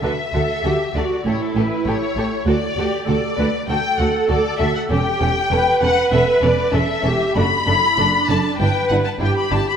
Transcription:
<<
  \new Staff \with { instrumentName = "Violin section" } { \time 4/4 \key d \major \tempo 4 = 98 e''4. d''8 cis''16 a'16 b'8 cis''4 | d''4 d''4 g''8 fis''8 d''8 e''16 fis''16 | g''4. fis''8 e''8 d''8 e''4 | b''4. a''8 g''8 fis''16 a''16 g''16 b''16 a''16 b''16 | }
  \new Staff \with { instrumentName = "Viola section" } { \time 4/4 \key d \major b'8 a'8 g'8 fis'8 e'2 | fis'8 g'8 a'8 b'8 a'2 | g'4 b'2 a'8 g'8 | fis'8 e'8 d'4 b'4 g'4 | }
  \new Staff \with { instrumentName = "Violin section" } { \time 4/4 \key d \major <fis' a'>8 <fis' a'>8 <fis' a'>8 <fis' a'>8 <g' a'>8 <g' a'>8 <g' a'>8 <g' a'>8 | <fis' a'>8 <fis' a'>8 <fis' a'>8 <fis' a'>8 <fis' a'>8 <fis' a'>8 <fis' a'>8 <fis' a'>8 | <cis' a'>8 <cis' a'>8 <cis' a'>8 <cis' a'>8 <cis' a'>8 <cis' a'>8 <cis' a'>8 <cis' a'>8 | <d' a'>8 <d' a'>8 <d' a'>8 <d' a'>8 <d' e'>8 <d' e'>8 <d' e'>8 <d' e'>8 | }
  \new Staff \with { instrumentName = "Cello section" } { \clef bass \time 4/4 \key d \major d8 d8 d8 d8 a,8 a,8 a,8 a,8 | d,8 d,8 d,8 d,8 d,8 d,8 d,8 d,8 | e,8 e,8 e,8 e,8 e,8 e,8 e,8 e,8 | fis,8 fis,8 fis,8 fis,8 g,8 g,8 g,8 g,8 | }
  \new Staff \with { instrumentName = "Double bass section" } { \clef bass \time 4/4 \key d \major d,8 d,8 d,8 d,8 a,,8 a,,8 a,,8 a,,8 | d,8 d,8 d,8 d,8 d,8 d,8 d,8 d,8 | e,,8 e,,8 e,,8 e,,8 e,,8 e,,8 e,,8 e,,8 | fis,,8 fis,,8 fis,,8 fis,,8 g,,8 g,,8 g,,8 g,,8 | }
>>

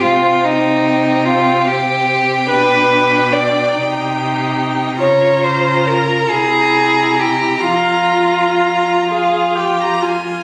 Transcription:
<<
  \new Staff \with { instrumentName = "Violin" } { \time 6/8 \key c \phrygian \tempo 4. = 47 g''2.~ | g''2. | bes''2.~ | bes''4. f''8 g''16 bes''16 aes''8 | }
  \new Staff \with { instrumentName = "Violin" } { \time 6/8 \key c \phrygian f'8 ees'4 f'8 g'4 | b'4 d''8 r4. | des''8 c''8 bes'8 aes'4 g'8 | f'2~ f'8 r8 | }
  \new Staff \with { instrumentName = "Viola" } { \time 6/8 \key c \phrygian c'2. | d'4. ees'4. | f'4. e'4. | f'4. aes'8 g'8 f'8 | }
  \new Staff \with { instrumentName = "Cello" } { \clef bass \time 6/8 \key c \phrygian c2. | b,4. c4. | des4. c4. | f,2~ f,8. r16 | }
>>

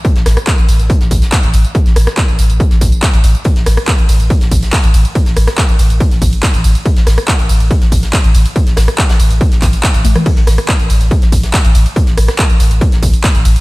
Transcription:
<<
  \new Staff \with { instrumentName = "Sub bass" } { \clef bass \time 4/4 \tempo 4 = 141 r16 a,,16 a,,16 r8 a,,16 a,,16 a,,16 r16 a,,16 a,,16 r8 a,,16 a,,16 r16 | r16 a,,16 a,,16 r8 a,,16 a,,16 a,,16 r16 a,,16 a,,16 r8 a,,16 a,,16 r16 | r16 a,,16 a,,16 r8 a,,16 a,,16 a,,16 r16 a,,16 a,,16 r8 a,,16 a,,16 r16 | r16 a,,16 a,,16 r8 a,,16 a,,16 a,,16 r16 a,,16 a,,16 r8 a,,16 a,,16 r16 |
r16 a,,16 a,,16 r8 a,,16 a,,16 a,,16 r16 a,,16 a,,16 r8 a,,16 a,,16 r16 | r16 a,,16 a,,16 r8 a,,16 a,,16 a,,16 r16 a,,16 a,,16 r8 a,,16 a,,16 r16 | r16 a,,16 a,,16 r8 a,,16 a,,16 a,,16 r16 a,,16 a,,16 r8 a,,16 a,,16 r16 | r16 a,,16 a,,16 r8 a,,16 a,,16 a,,16 r16 a,,16 a,,16 r8 a,,16 a,,16 r16 | }
  \new DrumStaff \with { instrumentName = "Drums" } \drummode { \time 4/4 <hh bd tamb>16 <hh sn>16 <hh hho ss sn tamb>16 <hh ss tamb>16 <hc hh bd sn tamb>16 <hh tamb>16 <hho tamb>16 <hh tamb>16 <hh bd tamb>16 <hh sn tamb>16 <hh hho bd tamb>16 <hh sn tamb>16 <hc hh bd sn tamb>16 <hh tamb>16 <hh hho tamb>16 <hh tamb>16 | <hh bd tamb>16 <hh sn tamb>16 <hh hho ss tamb>16 <hh ss sn tamb>16 <hc hh bd sn tamb>16 <hh tamb>16 <hh hho tamb>16 <hh tamb>16 <hh bd tamb>16 <hh sn tamb>16 <hh hho bd tamb>16 <hh tamb>16 <hc hh bd sn tamb>16 <hh tamb>16 <hh hho tamb>16 <hh tamb>16 | <hh bd cymr tamb>16 <hh cymr sn>16 <hh hho cymr ss sn tamb>16 <hh cymr ss tamb>16 <hc hh bd sn tamb>16 <hh cymr tamb>16 <hho cymr tamb>16 <hh cymr tamb>16 <hh bd cymr tamb>16 <hh cymr sn tamb>16 <hh hho bd cymr tamb>16 <hh cymr sn tamb>16 <hc hh bd cymr sn tamb>16 <hh cymr tamb>16 <hh hho cymr tamb>16 <hh cymr tamb>16 | <hh bd cymr tamb>16 <hh cymr sn tamb>16 <hh hho cymr ss tamb>16 <hh cymr ss sn tamb>16 <hc hh bd cymr sn tamb>16 <hh cymr tamb>16 <hh hho cymr tamb>16 <hh cymr tamb>16 <hh bd cymr tamb>16 <hh cymr sn tamb>16 <hh hho bd cymr tamb>16 <hh cymr tamb>16 <hc hh bd cymr sn tamb>16 <hh cymr tamb>16 <hh hho cymr tamb>16 <hh cymr tamb>16 |
<hh bd cymr tamb>16 <hh cymr sn>16 <hh hho cymr ss sn tamb>16 <hh cymr ss tamb>16 <hc hh bd cymr sn tamb>16 <hh cymr tamb>16 <hho cymr tamb>16 <hh cymr tamb>16 <hh bd cymr tamb>16 <hh cymr sn tamb>16 <hh hho bd cymr tamb>16 <hh cymr sn tamb>16 <hc hh bd cymr sn tamb>16 <hh cymr tamb>16 <hh hho cymr tamb>16 <hh cymr tamb>16 | <hh bd cymr tamb>16 <hh cymr sn tamb>16 <hh hho cymr ss sn tamb>16 <hh cymr ss tamb>16 <hc hh bd cymr tamb>16 <hh cymr sn tamb>16 <hho cymr tamb>16 <hh cymr tamb>16 <hh bd cymr tamb>16 <hh cymr sn tamb>16 <hc hh hho bd cymr tamb>16 <hh cymr tamb>16 <hc hh bd cymr tamb>16 <hh cymr tamb>16 <hh hho cymr tamb tommh>16 <hh cymr ss tamb toml>16 | <cymc hh bd cymr tamb>16 <hh cymr sn>16 <hh hho cymr ss sn tamb>16 <hh cymr ss tamb>16 <hc hh bd cymr sn tamb>16 <hh cymr tamb>16 <hho cymr tamb>16 <hh cymr tamb>16 <hh bd cymr tamb>16 <hh cymr sn tamb>16 <hh hho bd cymr tamb>16 <hh cymr sn tamb>16 <hc hh bd cymr sn tamb>16 <hh cymr tamb>16 <hh hho cymr tamb>16 <hh cymr tamb>16 | <hh bd cymr tamb>16 <hh cymr sn tamb>16 <hh hho cymr ss tamb>16 <hh cymr ss sn tamb>16 <hc hh bd cymr sn tamb>16 <hh cymr tamb>16 <hh hho cymr tamb>16 <hh cymr tamb>16 <hh bd cymr tamb>16 <hh cymr sn tamb>16 <hh hho bd cymr tamb>16 <hh cymr tamb>16 <hc hh bd cymr sn tamb>16 <hh cymr tamb>16 <hh hho cymr tamb>16 <hh cymr tamb>16 | }
>>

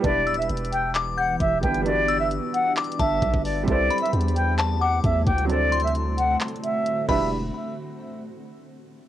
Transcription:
<<
  \new Staff \with { instrumentName = "Synth bell" } { \time 4/4 \key e \minor \tempo 4 = 132 r8 e'''4. d'''8 g'''8 r4 | r8 e'''4. d'''8 a''8 r4 | r8 b''4. a''8 d'''8 r4 | r8 c'''4. r4. b''8 |
r1 | }
  \new Staff \with { instrumentName = "Flute" } { \time 4/4 \key e \minor d''8. e''16 r8 g''8 r8 fis''8 e''8 g''8 | d''8. e''16 r8 fis''8 r8 e''4 d''8 | d''8. e''16 r8 g''8 r8 fis''8 e''8 g''8 | d''8. e''16 r8 fis''8 r8 e''4 e''8 |
r1 | }
  \new Staff \with { instrumentName = "Felt piano" } { \time 4/4 \key e \minor <g b d' e' b'>2.~ <g b d' e' b'>8 <g b d' e' b'>8 | <g b d' fis' b'>1 | <g c' e' a' c''>1 | <fis c' d' a' c''>2.~ <fis c' d' a' c''>8 <g d' e' b'>8 |
r1 | }
  \new Staff \with { instrumentName = "Ambient pad" } { \time 4/4 \key e \minor <e b d' g'>1 | <g fis' b'>1 | <c a e'>1 | <d c' fis'>2.~ <d c' fis'>8 r8 |
r1 | }
  \new Staff \with { instrumentName = "808-style bass" } { \clef bass \time 4/4 \key e \minor e,,8 d,,16 e,,16 e,,2 e,,8 g,,8~ | g,,4~ g,,16 r4 r16 g,,8 b,,16 g,,8. | c,8 r8 e,2 e,8 d,8~ | d,2 r4. e,,8~ |
e,,8 r2. r8 | }
  \new DrumStaff \with { instrumentName = "Drums" } \drummode { \time 4/4 \tuplet 3/2 { <hh bd>16 r16 r16 hh16 hh16 hh16 hh16 hh16 hh16 hh16 r16 r16 } <hc hh>4 <hh bd>8 <hh bd>16 hh16 | hh8 hh8 hh8 hh8 \tuplet 3/2 { <hc hh>16 hh16 hh16 <hh bd>16 r16 r16 } <hh bd>16 bd16 hho8 | \tuplet 3/2 { <hh bd>16 r16 r16 hh16 hh16 hh16 hh16 hh16 hh16 hh16 r16 r16 } <hc hh>4 <hh bd>8 <hh bd>16 hh16 | \tuplet 3/2 { hh16 r16 r16 hh16 hh16 hh16 } hh8 hh8 \tuplet 3/2 { <hc hh>16 hh16 hh16 hh16 r16 r16 } hh8 <cymc bd>8 |
r4 r4 r4 r4 | }
>>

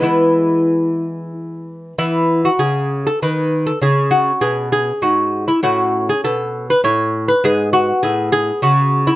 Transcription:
<<
  \new Staff \with { instrumentName = "Lute" } { \time 3/4 \key e \major \tempo 4 = 99 e'2 r4 | e'8. fis'16 gis'8. a'16 b'8. a'16 | gis'8 fis'8 gis'8 gis'8 fis'8. e'16 | fis'8. gis'16 a'8. b'16 cis''8. b'16 |
gis'8 fis'8 gis'8 gis'8 fis'8. e'16 | }
  \new Staff \with { instrumentName = "Lute" } { \clef bass \time 3/4 \key e \major << { <e gis b>2. | b2. | cis'2. | cis'2. |
b2. | } \\ { r2. | e4 cis4 dis4 | cis4 b,4 gis,4 | a,4 b,4 a,4 |
gis,4 a,4 cis4 | } >> }
>>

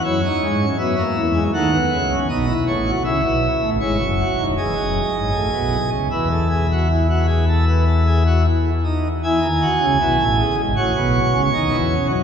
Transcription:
<<
  \new Staff \with { instrumentName = "Pipe organ" } { \time 4/4 \key b \dorian \tempo 4 = 79 << { cis''4 e''4 fis''4 dis''8 cis''8 | \key e \major e''4 cis''4 dis''2 | e''2.~ e''8 r8 | gis''2 cis''2 | } \\ { e'16 dis'8 cis'16 b16 ais8 gis16 a16 b8 cis'16 dis'16 e'8 fis'16 | e'4 e'8 fis'8 gis'2 | b'16 a'16 gis'16 fis'16 e'16 fis'16 gis'16 a'16 b'16 a'16 gis'16 fis'16 e'8 dis'8 | e'8 fis'8 e'8 gis'8 fis'4 dis'8 cis'8 | } >> }
  \new Staff \with { instrumentName = "Pipe organ" } { \clef bass \time 4/4 \key b \dorian <fis, fis>8 <gis, gis>8 <fis, fis>8 <e, e>8 <dis, dis>8 <cis, cis>8 <b,, b,>8 <a,, a,>8 | \key e \major <cis, cis>16 <b,, b,>8 <a,, a,>16 <gis,, gis,>16 <fis,, fis,>8 <dis,, dis,>16 <e,, e,>16 <fis,, fis,>8 <gis,, gis,>16 <a,, a,>16 <b,, b,>8 <cis, cis>16 | <e, e>2.~ <e, e>8 r8 | <e, e>16 <dis, dis>8 <cis, cis>16 <b,, b,>16 <a,, a,>8 <gis,, gis,>16 <a,, a,>16 <b,, b,>8 <cis, cis>16 <dis, dis>16 <e, e>8 <fis, fis>16 | }
>>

